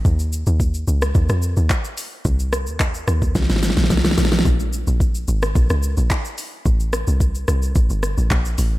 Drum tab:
HH |----------------------------o---|----------------------------o---|----------------------------o---|----------------------------o---|
SH |x-x-x-x-x-x-x-x-x-x-x-x-x-x-x---|x-x-x-x-x-x-x-x-x-x-x-x-x-x-x---|x-x-x-x-x-x-x-x-x-x-x-x-x-x-x---|x-x-x-x-x-x-x-x-x-x-x-x-x-x-x---|
CP |------------------------x-------|--------x-----------------------|------------------------x-------|------------------------x-------|
SD |--------------r---r-------------|----r-------r---oooooooooooooooo|--------------r---r-------------|----r-------r-------r-----------|
BD |o-------o-------o-------o-------|o-------o-----o-o-------o-------|o-------o-------o-------o-------|o-------o-------o-------o-------|